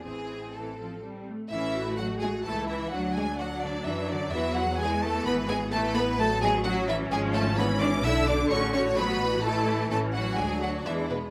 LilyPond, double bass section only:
\new Staff \with { instrumentName = "Double bass section" } { \clef bass \time 3/4 \key a \minor \tempo 4 = 128 a,,2~ a,,8 r8 | \key a \major a,,2 cis,4 | d,2 fis,4 | e,2 gis,,4 |
a,,2. | gis,,2 b,,4 | a,,2. | a,,4 d,4 e,4 | }